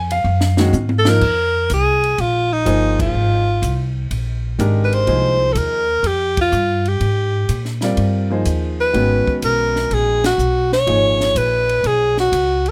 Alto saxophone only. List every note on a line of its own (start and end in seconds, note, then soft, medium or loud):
0.99 1.11 A4 medium
1.10 1.72 A#4 loud
1.73 2.22 G#4 medium
2.21 2.54 F4 medium
2.53 3.00 D#4 medium
3.01 3.93 F4 medium
4.85 4.96 B4 medium
4.94 5.54 C5 medium
5.53 5.59 A4 medium
5.58 6.08 A#4 medium
6.07 6.39 G4 medium
6.41 6.90 F4 medium
6.88 7.84 G4 medium
8.81 9.39 B4 medium
9.44 9.95 A#4 medium
9.94 10.25 G#4 medium
10.26 10.70 F#4 medium
10.73 11.39 C#5 loud
11.37 11.89 B4 medium
11.87 12.19 G#4 loud
12.20 12.70 F#4 medium